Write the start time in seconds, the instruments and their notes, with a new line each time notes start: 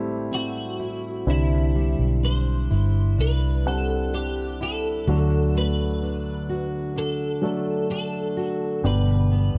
Already playing: fingered electric bass A1, steel-string acoustic guitar A2 G3 C4 E4, grand piano G3 A3 C4 E4
0.31 steel-string acoustic guitar C4, clean electric guitar F#4
0.80 steel-string acoustic guitar E4
1.26 fingered electric bass C2, grand piano D3 G3 C4 D4 E4, clean electric guitar E4
1.75 steel-string acoustic guitar G3
1.99 fingered electric bass B1
2.23 steel-string acoustic guitar D4, clean electric guitar C5
2.71 fingered electric bass G1, steel-string acoustic guitar E4
3.18 fingered electric bass C2, steel-string acoustic guitar D4, clean electric guitar B4
3.66 grand piano G3 C4 D4 F#5, steel-string acoustic guitar G3, clean electric guitar A4
4.13 steel-string acoustic guitar D4, clean electric guitar G4
4.61 steel-string acoustic guitar E4, clean electric guitar A4
5.07 fingered electric bass D2, steel-string acoustic guitar D3, grand piano D3 F#3 A3 D4 F#4
5.55 steel-string acoustic guitar A3, clean electric guitar B4
6.02 steel-string acoustic guitar D4
6.49 steel-string acoustic guitar F#4
6.96 steel-string acoustic guitar D4, clean electric guitar A4
7.42 grand piano F#3 A3 D4 A4, steel-string acoustic guitar A3
7.90 steel-string acoustic guitar D4, clean electric guitar A4
8.37 steel-string acoustic guitar F#4
8.83 fingered electric bass G1, grand piano B2 D3 G3 B3 D4 G4, clean electric guitar B4
9.32 steel-string acoustic guitar B3
9.55 fingered electric bass F#1